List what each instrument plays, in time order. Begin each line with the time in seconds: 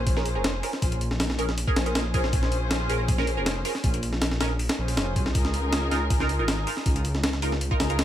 Already playing: detuned saw bass A#1, string section C#4 F4 G#4 C5
0.07 kick, open hi-hat
0.16 synth stab C#4 G#4 A#4, snare
0.25 string section C#4 F4 G#4 C5, open hi-hat
0.35 detuned saw bass F1, synth stab C#4 G#4 A#4
0.44 snare, open hi-hat
0.63 synth stab C#4 G#4 A#4, open hi-hat
0.73 snare
0.82 detuned saw bass A#1, string section C#4 F4 G#4 C5, kick, open hi-hat
0.92 closed hi-hat
1.01 open hi-hat
1.11 snare
1.20 snare, open hi-hat
1.30 snare
1.38 detuned saw bass A#1, synth stab C#4 G#4 A#4, open hi-hat
1.49 snare
1.58 open hi-hat
1.67 synth stab C#4 G#4 A#4, kick
1.76 detuned saw bass A#1, string section C#4 F4 G#4 C5, snare, open hi-hat
1.86 synth stab C#4 G#4 A#4, closed hi-hat
1.95 snare, open hi-hat
2.14 synth stab C#4 G#4 A#4, string section C#4 F4 G#4 C5, kick, open hi-hat
2.24 snare
2.33 detuned saw bass A#1, string section C#4 F4 G#4 C5, kick, open hi-hat
2.43 snare
2.52 open hi-hat
2.71 snare, open hi-hat
2.90 detuned saw bass A#1, synth stab C#4 G#4 A#4, open hi-hat
3.08 kick, open hi-hat
3.18 synth stab C#4 G#4 A#4, snare
3.27 string section C#4 F4 G#4 C5, open hi-hat
3.37 detuned saw bass F1, synth stab C#4 G#4 A#4
3.46 snare, open hi-hat
3.65 synth stab C#4 G#4 A#4, open hi-hat
3.75 snare
3.84 detuned saw bass A#1, string section C#4 F4 G#4 C5, kick, open hi-hat
3.94 closed hi-hat
4.03 open hi-hat
4.13 snare
4.22 snare, open hi-hat
4.31 snare
4.40 detuned saw bass A#1, synth stab C#4 G#4 A#4, snare, open hi-hat
4.59 open hi-hat
4.69 snare, open hi-hat
4.78 detuned saw bass A#1, string section C#4 F4 G#4 C5
4.88 open hi-hat
4.97 detuned saw bass F1, snare, open hi-hat
5.16 detuned saw bass C2, kick, open hi-hat
5.26 snare
5.35 detuned saw bass C#2, string section D#4 F4 G#4 A#4, kick, open hi-hat
5.45 snare
5.54 open hi-hat
5.73 snare, open hi-hat
5.91 detuned saw bass C#2, synth stab D#4 F4 A#4, snare, open hi-hat
6.10 kick, open hi-hat
6.20 synth stab D#4 F4 A#4, snare
6.29 string section D#4 F4 G#4 A#4, open hi-hat
6.39 detuned saw bass G#1, synth stab D#4 F4 A#4
6.48 snare, open hi-hat
6.67 synth stab D#4 F4 A#4, open hi-hat
6.77 snare
6.86 detuned saw bass C#2, string section D#4 F4 G#4 A#4, kick, open hi-hat
6.96 closed hi-hat
7.05 open hi-hat
7.15 snare
7.24 snare, open hi-hat
7.33 snare
7.42 detuned saw bass C#2, synth stab D#4 F4 A#4, open hi-hat
7.52 snare
7.61 open hi-hat
7.71 synth stab D#4 F4 A#4, kick
7.80 detuned saw bass C#2, string section D#4 F4 G#4 A#4, snare, open hi-hat
7.90 synth stab D#4 F4 A#4, closed hi-hat
7.99 snare, open hi-hat